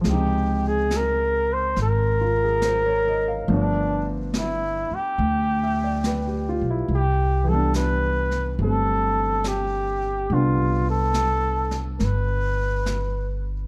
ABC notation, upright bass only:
X:1
M:4/4
L:1/8
Q:"Swing" 1/4=70
K:C
V:1 name="Upright bass" clef=bass
_D,,4 _A,,,4 | G,,,3 z D,,3 B,,, | C,,4 G,,,4 | C,,4 G,,,4 |]